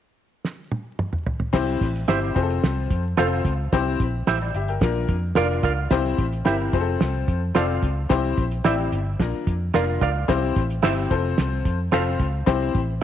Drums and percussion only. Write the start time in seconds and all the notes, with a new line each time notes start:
0.45 snare
0.71 high tom
0.99 mid tom
1.13 mid tom
1.26 floor tom
1.40 floor tom
1.53 kick, snare, crash
1.81 kick, snare, closed hi-hat
1.96 closed hi-hat
2.09 snare, closed hi-hat
2.36 kick, closed hi-hat
2.50 closed hi-hat
2.64 snare, closed hi-hat
2.90 kick, closed hi-hat
3.18 snare, closed hi-hat
3.45 kick, closed hi-hat
3.73 kick, snare, closed hi-hat
4.00 kick, closed hi-hat
4.27 snare, closed hi-hat
4.54 closed hi-hat
4.68 closed hi-hat
4.81 kick, snare, closed hi-hat
5.09 kick, closed hi-hat
5.35 snare, closed hi-hat
5.63 kick, closed hi-hat
5.90 kick, snare, closed hi-hat
6.18 kick, closed hi-hat
6.33 closed hi-hat
6.46 snare, closed hi-hat
6.73 kick, closed hi-hat
7.01 snare, closed hi-hat
7.28 kick, closed hi-hat
7.55 snare, closed hi-hat
7.83 kick, closed hi-hat
8.10 kick, snare, closed hi-hat
8.38 kick, closed hi-hat
8.51 closed hi-hat
8.65 snare, closed hi-hat
8.92 closed hi-hat
9.20 kick, snare, closed hi-hat
9.47 kick, closed hi-hat
9.74 snare, closed hi-hat
10.01 kick, closed hi-hat
10.29 kick, snare, closed hi-hat
10.56 kick, snare, closed hi-hat
10.70 closed hi-hat
10.83 finger snap, snare, closed hi-hat
11.11 kick, closed hi-hat
11.38 snare, closed hi-hat
11.65 kick, closed hi-hat
11.92 finger snap, snare, closed hi-hat
12.20 kick, closed hi-hat
12.47 kick, snare, closed hi-hat
12.75 kick, closed hi-hat